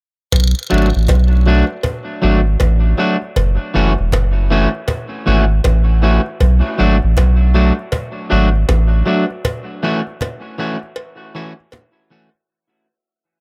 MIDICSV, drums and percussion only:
0, 0, Header, 1, 3, 480
1, 0, Start_track
1, 0, Tempo, 760456
1, 203, Time_signature, 4, 2, 24, 8
1, 8459, End_track
2, 0, Start_track
2, 0, Title_t, "Cajon"
2, 204, Note_on_c, 9, 36, 100
2, 267, Note_off_c, 9, 36, 0
2, 444, Note_on_c, 9, 38, 35
2, 507, Note_off_c, 9, 38, 0
2, 684, Note_on_c, 9, 36, 105
2, 689, Note_on_c, 9, 38, 101
2, 747, Note_off_c, 9, 36, 0
2, 752, Note_off_c, 9, 38, 0
2, 920, Note_on_c, 9, 38, 44
2, 983, Note_off_c, 9, 38, 0
2, 1076, Note_on_c, 9, 38, 25
2, 1139, Note_off_c, 9, 38, 0
2, 1163, Note_on_c, 9, 36, 108
2, 1226, Note_off_c, 9, 36, 0
2, 1402, Note_on_c, 9, 38, 39
2, 1465, Note_off_c, 9, 38, 0
2, 1561, Note_on_c, 9, 38, 29
2, 1624, Note_off_c, 9, 38, 0
2, 1643, Note_on_c, 9, 36, 116
2, 1645, Note_on_c, 9, 38, 110
2, 1706, Note_off_c, 9, 36, 0
2, 1708, Note_off_c, 9, 38, 0
2, 1877, Note_on_c, 9, 38, 38
2, 1940, Note_off_c, 9, 38, 0
2, 2032, Note_on_c, 9, 38, 28
2, 2095, Note_off_c, 9, 38, 0
2, 2122, Note_on_c, 9, 36, 100
2, 2185, Note_off_c, 9, 36, 0
2, 2362, Note_on_c, 9, 38, 35
2, 2425, Note_off_c, 9, 38, 0
2, 2514, Note_on_c, 9, 38, 28
2, 2578, Note_off_c, 9, 38, 0
2, 2603, Note_on_c, 9, 36, 104
2, 2608, Note_on_c, 9, 38, 110
2, 2666, Note_off_c, 9, 36, 0
2, 2672, Note_off_c, 9, 38, 0
2, 2839, Note_on_c, 9, 38, 42
2, 2902, Note_off_c, 9, 38, 0
2, 2997, Note_on_c, 9, 38, 24
2, 3061, Note_off_c, 9, 38, 0
2, 3082, Note_on_c, 9, 36, 109
2, 3145, Note_off_c, 9, 36, 0
2, 3323, Note_on_c, 9, 38, 41
2, 3386, Note_off_c, 9, 38, 0
2, 3481, Note_on_c, 9, 38, 28
2, 3544, Note_off_c, 9, 38, 0
2, 3563, Note_on_c, 9, 36, 108
2, 3565, Note_on_c, 9, 38, 111
2, 3626, Note_off_c, 9, 36, 0
2, 3628, Note_off_c, 9, 38, 0
2, 3798, Note_on_c, 9, 38, 39
2, 3861, Note_off_c, 9, 38, 0
2, 3952, Note_on_c, 9, 38, 26
2, 4015, Note_off_c, 9, 38, 0
2, 4042, Note_on_c, 9, 36, 101
2, 4105, Note_off_c, 9, 36, 0
2, 4282, Note_on_c, 9, 38, 39
2, 4345, Note_off_c, 9, 38, 0
2, 4435, Note_on_c, 9, 38, 28
2, 4498, Note_off_c, 9, 38, 0
2, 4524, Note_on_c, 9, 36, 99
2, 4529, Note_on_c, 9, 38, 103
2, 4587, Note_off_c, 9, 36, 0
2, 4592, Note_off_c, 9, 38, 0
2, 4760, Note_on_c, 9, 38, 43
2, 4823, Note_off_c, 9, 38, 0
2, 4918, Note_on_c, 9, 38, 25
2, 4981, Note_off_c, 9, 38, 0
2, 5003, Note_on_c, 9, 36, 112
2, 5066, Note_off_c, 9, 36, 0
2, 5243, Note_on_c, 9, 38, 39
2, 5306, Note_off_c, 9, 38, 0
2, 5401, Note_on_c, 9, 38, 28
2, 5464, Note_off_c, 9, 38, 0
2, 5484, Note_on_c, 9, 36, 110
2, 5484, Note_on_c, 9, 38, 113
2, 5547, Note_off_c, 9, 36, 0
2, 5547, Note_off_c, 9, 38, 0
2, 5718, Note_on_c, 9, 38, 39
2, 5781, Note_off_c, 9, 38, 0
2, 5873, Note_on_c, 9, 38, 26
2, 5936, Note_off_c, 9, 38, 0
2, 5963, Note_on_c, 9, 36, 98
2, 6026, Note_off_c, 9, 36, 0
2, 6205, Note_on_c, 9, 38, 38
2, 6268, Note_off_c, 9, 38, 0
2, 6356, Note_on_c, 9, 38, 28
2, 6419, Note_off_c, 9, 38, 0
2, 6444, Note_on_c, 9, 36, 100
2, 6449, Note_on_c, 9, 38, 101
2, 6507, Note_off_c, 9, 36, 0
2, 6512, Note_off_c, 9, 38, 0
2, 6679, Note_on_c, 9, 38, 40
2, 6742, Note_off_c, 9, 38, 0
2, 6836, Note_on_c, 9, 38, 27
2, 6899, Note_off_c, 9, 38, 0
2, 6925, Note_on_c, 9, 38, 46
2, 6988, Note_off_c, 9, 38, 0
2, 7162, Note_on_c, 9, 38, 36
2, 7225, Note_off_c, 9, 38, 0
2, 7323, Note_on_c, 9, 38, 28
2, 7386, Note_off_c, 9, 38, 0
2, 7405, Note_on_c, 9, 38, 107
2, 7468, Note_off_c, 9, 38, 0
2, 8459, End_track
3, 0, Start_track
3, 0, Title_t, "Drums"
3, 204, Note_on_c, 9, 56, 70
3, 204, Note_on_c, 9, 58, 68
3, 267, Note_off_c, 9, 56, 0
3, 267, Note_off_c, 9, 58, 0
3, 689, Note_on_c, 9, 56, 75
3, 752, Note_off_c, 9, 56, 0
3, 1158, Note_on_c, 9, 56, 72
3, 1221, Note_off_c, 9, 56, 0
3, 1640, Note_on_c, 9, 56, 71
3, 1703, Note_off_c, 9, 56, 0
3, 2124, Note_on_c, 9, 56, 71
3, 2187, Note_off_c, 9, 56, 0
3, 2609, Note_on_c, 9, 56, 75
3, 2672, Note_off_c, 9, 56, 0
3, 3078, Note_on_c, 9, 56, 67
3, 3141, Note_off_c, 9, 56, 0
3, 3561, Note_on_c, 9, 56, 70
3, 3625, Note_off_c, 9, 56, 0
3, 4044, Note_on_c, 9, 56, 66
3, 4107, Note_off_c, 9, 56, 0
3, 4529, Note_on_c, 9, 56, 75
3, 4592, Note_off_c, 9, 56, 0
3, 4999, Note_on_c, 9, 56, 68
3, 5062, Note_off_c, 9, 56, 0
3, 5483, Note_on_c, 9, 56, 70
3, 5546, Note_off_c, 9, 56, 0
3, 5964, Note_on_c, 9, 56, 73
3, 6028, Note_off_c, 9, 56, 0
3, 6450, Note_on_c, 9, 56, 74
3, 6514, Note_off_c, 9, 56, 0
3, 6918, Note_on_c, 9, 56, 70
3, 6981, Note_off_c, 9, 56, 0
3, 7398, Note_on_c, 9, 56, 73
3, 7461, Note_off_c, 9, 56, 0
3, 8459, End_track
0, 0, End_of_file